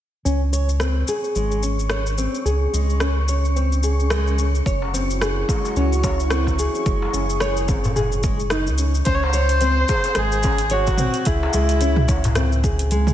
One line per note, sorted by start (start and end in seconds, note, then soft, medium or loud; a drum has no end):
0.24 1.03 C#2 medium
0.24 9.07 C#4 medium
0.24 0.41 C#4 medium
0.24 9.07 C#6 medium
0.24 shaker soft
0.53 0.69 C#5 medium
0.53 shaker medium
0.69 shaker soft
0.80 1.07 C4 medium
0.80 cross-stick medium
0.80 shaker soft
1.08 1.35 G#4 medium
1.08 shaker medium
1.24 shaker soft
1.35 2.27 G#1 medium
1.35 1.62 G#3 medium
1.35 shaker soft
1.51 shaker soft
1.63 1.79 C#4 medium
1.63 shaker medium
1.79 shaker soft
1.90 2.06 C#5 medium
1.90 cross-stick medium
1.90 shaker soft
2.06 shaker soft
2.18 2.45 C4 medium
2.18 shaker medium
2.35 shaker soft
2.45 2.67 C#2 loud
2.45 2.72 G#4 medium
2.45 shaker soft
2.73 4.61 C#2 medium
2.73 3.00 G#3 medium
2.73 shaker medium
2.90 shaker soft
3.00 3.17 C#4 medium
3.00 cross-stick medium
3.00 shaker soft
3.28 3.44 C#5 medium
3.28 shaker medium
3.45 shaker soft
3.56 3.83 C4 medium
3.56 shaker soft
3.72 shaker soft
3.83 4.10 G#4 medium
3.83 shaker medium
4.00 shaker soft
4.10 4.38 G#3 medium
4.10 cross-stick loud
4.10 shaker soft
4.27 shaker soft
4.39 4.54 C#4 medium
4.39 shaker medium
4.55 shaker soft
4.66 5.44 F#1 medium
4.66 9.03 E4 medium
4.66 6.85 F#4 medium
4.66 4.82 C#5 medium
4.66 9.03 C#6 medium
4.66 kick loud
4.66 shaker soft
4.82 darbuka tek medium
4.94 5.20 C4 medium
4.94 darbuka ka soft
4.94 shaker medium
5.10 shaker soft
5.21 5.48 G#4 medium
5.21 cross-stick medium
5.21 shaker soft
5.49 5.76 G#3 medium
5.49 kick loud
5.49 darbuka ka medium
5.49 darbuka tek soft
5.49 shaker medium
5.65 darbuka ka medium
5.65 shaker soft
5.76 6.68 C#2 medium
5.76 5.92 C#4 medium
5.76 darbuka tek soft
5.76 shaker soft
5.93 shaker soft
6.04 6.19 C#5 medium
6.04 kick medium
6.04 darbuka ka soft
6.04 darbuka tek medium
6.04 shaker medium
6.20 shaker soft
6.30 6.58 C4 medium
6.30 cross-stick medium
6.30 shaker soft
6.47 kick medium
6.47 darbuka ka medium
6.47 shaker soft
6.59 6.86 G#4 medium
6.59 shaker medium
6.75 shaker soft
6.86 7.07 F#1 loud
6.86 7.13 G#3 medium
6.86 9.04 G#4 medium
6.86 kick loud
6.86 shaker soft
7.02 darbuka tek medium
7.13 8.69 F#1 medium
7.13 7.29 C#4 medium
7.13 darbuka ka soft
7.13 shaker medium
7.30 shaker soft
7.40 7.57 C#5 medium
7.40 cross-stick medium
7.40 shaker soft
7.57 shaker soft
7.68 7.95 C4 medium
7.68 kick loud
7.68 darbuka ka medium
7.68 darbuka tek soft
7.68 shaker medium
7.84 darbuka ka medium
7.84 darbuka dum medium
7.84 shaker soft
7.96 8.11 G#4 medium
7.96 darbuka tek soft
7.96 darbuka dum medium
7.96 shaker soft
8.12 shaker soft
8.23 8.38 G#3 medium
8.23 kick loud
8.23 shaker medium
8.40 shaker soft
8.50 8.67 D#4 loud
8.50 cross-stick medium
8.50 shaker soft
8.67 9.02 C#2 medium
8.67 shaker soft
8.78 8.94 C#4 medium
8.78 shaker medium
8.94 shaker soft
9.05 9.84 C#2 loud
9.05 9.22 C#4 medium
9.05 9.16 C5 loud
9.05 kick loud
9.05 closed hi-hat soft
9.05 shaker soft
9.15 9.25 C#5 medium
9.23 10.20 C5 loud
9.23 darbuka tek medium
9.33 9.49 C#5 medium
9.33 darbuka ka soft
9.33 shaker medium
9.49 closed hi-hat soft
9.49 shaker soft
9.61 9.88 C4 medium
9.61 closed hi-hat soft
9.61 shaker soft
9.88 10.15 G#4 medium
9.88 kick loud
9.88 darbuka ka medium
9.88 darbuka tek soft
9.88 shaker medium
10.04 closed hi-hat medium
10.04 darbuka ka medium
10.04 shaker soft
10.15 11.08 G#1 medium
10.15 10.43 G#3 medium
10.15 10.74 G#4 loud
10.15 cross-stick medium
10.15 closed hi-hat soft
10.15 darbuka tek soft
10.15 shaker soft
10.32 shaker soft
10.43 10.59 C#4 medium
10.43 kick loud
10.43 darbuka ka soft
10.43 darbuka tek medium
10.43 shaker medium
10.58 closed hi-hat medium
10.58 shaker soft
10.70 11.28 F#4 medium
10.70 10.87 C#5 medium
10.70 closed hi-hat soft
10.70 shaker soft
10.87 kick medium
10.87 darbuka ka medium
10.87 shaker soft
10.97 11.26 C4 medium
10.97 mid tom medium
10.97 shaker medium
11.14 closed hi-hat medium
11.14 shaker soft
11.25 11.48 C#2 medium
11.25 12.37 E4 medium
11.25 11.53 G#4 medium
11.25 kick loud
11.25 closed hi-hat soft
11.25 shaker soft
11.43 darbuka tek medium
11.53 13.13 C#2 medium
11.53 11.81 G#3 medium
11.53 darbuka ka soft
11.53 shaker medium
11.69 closed hi-hat medium
11.69 shaker soft
11.81 11.97 C#4 medium
11.81 closed hi-hat soft
11.81 shaker soft
11.96 mid tom medium
12.08 12.24 C#5 medium
12.08 kick loud
12.08 darbuka ka medium
12.08 darbuka tek soft
12.08 shaker medium
12.24 closed hi-hat medium
12.24 darbuka ka medium
12.24 darbuka dum medium
12.24 shaker soft
12.35 12.63 C4 medium
12.35 cross-stick medium
12.35 closed hi-hat soft
12.35 darbuka tek soft
12.35 darbuka dum medium
12.35 shaker soft
12.52 shaker soft
12.64 12.91 G#4 medium
12.64 kick loud
12.64 shaker medium
12.79 closed hi-hat medium
12.79 shaker soft
12.91 13.13 G#3 medium
12.91 closed hi-hat soft
12.91 shaker soft
13.07 mid tom medium
13.07 shaker soft